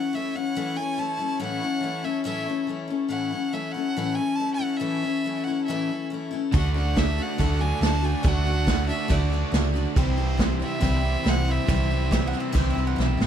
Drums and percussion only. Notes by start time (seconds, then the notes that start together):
6.53 kick, crash
6.76 ride
6.97 kick, snare, ride
7.18 ride
7.39 kick, ride
7.61 ride
7.83 snare, ride
8.04 ride
8.24 kick, ride
8.46 ride
8.67 kick, snare, ride
8.89 ride
9.10 kick, ride
9.32 ride
9.53 snare, ride
9.75 ride
9.96 kick, ride
10.18 ride
10.39 kick, snare, ride
10.61 ride
10.82 kick, ride
11.05 ride
11.26 snare, ride
11.47 ride
11.68 kick, ride
11.90 ride
12.12 kick, snare, ride
12.34 ride
12.55 kick, ride
12.77 ride
13.00 snare
13.21 snare